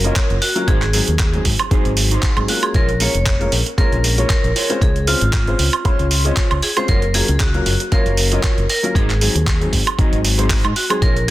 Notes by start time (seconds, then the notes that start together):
Already playing: A#4
0.04 F#3 A#3 C#4 F4 F#4 A#4 C#5 D#5, closed hi-hat
0.16 kick, clap, closed hi-hat
0.30 F#1, closed hi-hat
0.42 F#4, open hi-hat
0.55 F#3 A#3 C#4 F4 A#4, closed hi-hat
0.67 G#1 D#4 F#4 G#4 C5, kick, closed hi-hat
0.82 clap, closed hi-hat
0.93 F#3 G#3 C4 D#4 G#4, muted clean electric guitar stroke, open hi-hat
1.08 D#2, closed hi-hat
1.19 kick, clap, closed hi-hat
1.33 F#3 G#3 C4 D#4 G#4, muted clean electric guitar stroke, closed hi-hat
1.45 G#1, kick, open hi-hat
1.59 muted clean electric guitar stroke, closed hi-hat, high woodblock
1.71 F#3 G#3 C4 D#4 F#4 G#4 C5, kick, closed hi-hat
1.85 G#1, closed hi-hat
1.97 open hi-hat
2.11 D#4 F#4 G#4 C5, closed hi-hat
2.23 kick, clap, closed hi-hat
2.36 G#1 F#3 G#3 C4 D#4 G#4, closed hi-hat, high woodblock
2.48 G#3 A#3 C#4 F4 F#4 A#4, open hi-hat
2.63 G#4, closed hi-hat, high woodblock
2.74 A#1 F4 G#4 A#4 C#5, kick, closed hi-hat
2.89 closed hi-hat
3.00 G#3 A#3 C#4 F4 A#4 C#5, open hi-hat
3.15 F1, closed hi-hat
3.26 kick, clap, closed hi-hat
3.40 G#3 A#3 C#4 F4 A#4, closed hi-hat
3.52 A#1, open hi-hat
3.66 muted clean electric guitar stroke, closed hi-hat
3.77 G#3 A#3 C#4 F4 G#4 A#4 C#5, muted fingered electric bass stroke, kick, closed hi-hat
3.92 A#1, closed hi-hat
4.04 open hi-hat
4.18 G#3 A#3 C#4 F4 G#4 A#4 C#5, closed hi-hat
4.30 A#4, kick, clap, closed hi-hat
4.44 A#1, closed hi-hat
4.55 F4 G#4 C5 C#5, open hi-hat
4.69 G#3 C4 C#4 F4 C5, closed hi-hat
4.81 C#2 G#4, kick, closed hi-hat
4.96 closed hi-hat
5.07 G#3 C4 C#4 F4 C5, open hi-hat
5.21 G#1, closed hi-hat
5.33 kick, clap, closed hi-hat
5.47 G#3 C4 C#4 F4 C5, muted clean electric guitar stroke, closed hi-hat
5.59 C#2, open hi-hat
5.73 muted clean electric guitar stroke, closed hi-hat, high woodblock
5.84 G#3 C#4 F4 G#4 C5 C#5 C6, kick, closed hi-hat
5.99 C#2, closed hi-hat
6.11 open hi-hat
6.25 G#3 C4 C#4 F4 G#4 C5 C#5 D#5, closed hi-hat
6.37 kick, clap, closed hi-hat
6.51 C#2, closed hi-hat, high woodblock
6.62 G#4, open hi-hat
6.76 G#3 C4 C#4 F4 C5, closed hi-hat, high woodblock
6.88 F#1 F4 F#4 A#4 C#5, kick, closed hi-hat
7.02 closed hi-hat
7.14 F#3 A#3 C#4 F4 G#4 A#4, muted clean electric guitar stroke, open hi-hat
7.28 C#2, closed hi-hat
7.40 F#4, kick, clap, closed hi-hat
7.54 F#3 A#3 C#4 F4 A#4, muted clean electric guitar stroke, closed hi-hat
7.66 F#1, open hi-hat
7.80 muted clean electric guitar stroke, closed hi-hat
7.91 F#3 A#3 C#4 F4 F#4 A#4 C#5 F5, muted fingered electric bass stroke, kick, closed hi-hat
8.06 F#1, closed hi-hat
8.17 open hi-hat
8.31 F#3 A#3 C#4 F4 F#4 A#4 C#5 D#5, closed hi-hat
8.43 kick, clap, closed hi-hat
8.58 F#1, closed hi-hat
8.69 A#4, open hi-hat
8.83 F#3 A#3 C#4 F4 A#4, closed hi-hat
8.94 G#1 D#4 F#4 G#4 C5, kick, closed hi-hat
9.10 clap, closed hi-hat
9.21 F#3 G#3 C4 D#4 G#4, muted clean electric guitar stroke, open hi-hat
9.35 D#2, closed hi-hat
9.47 kick, clap, closed hi-hat
9.61 F#3 G#3 C4 D#4 G#4, muted clean electric guitar stroke, closed hi-hat
9.73 G#1, kick, open hi-hat
9.86 muted clean electric guitar stroke, closed hi-hat, high woodblock
9.98 F#3 G#3 C4 D#4 F#4 G#4 D#5, kick, closed hi-hat
10.13 G#1, closed hi-hat
10.25 open hi-hat
10.38 F#3 G#3 C4 D#4 F#4 G#4 C5, closed hi-hat
10.50 kick, clap, open hi-hat
10.64 G#2, closed hi-hat, high woodblock
10.76 F#4, open hi-hat
10.90 F#3 G#3 C4 D#4 G#4, closed hi-hat, high woodblock
11.01 A#1 F4 G#4 A#4 C#5, kick, closed hi-hat
11.16 closed hi-hat